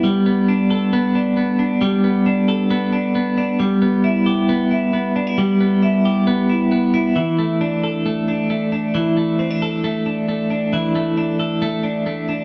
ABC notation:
X:1
M:4/4
L:1/16
Q:1/4=135
K:G
V:1 name="Clean electric guitar"
G,2 B,2 D2 A2 B,2 D2 B,2 D2 | G,2 B,2 D2 A2 B,2 D2 B,2 D2 | G,2 B,2 E2 G2 B,2 E2 B,2 D E | G,2 B,2 E2 G2 B,2 E2 B,2 E2 |
E,2 A,2 D2 A2 A,2 D2 A,2 D2 | E,2 A,2 C D A2 A,2 D2 A,2 D2 | E,2 A,2 D2 A2 A,2 D2 A,2 D2 |]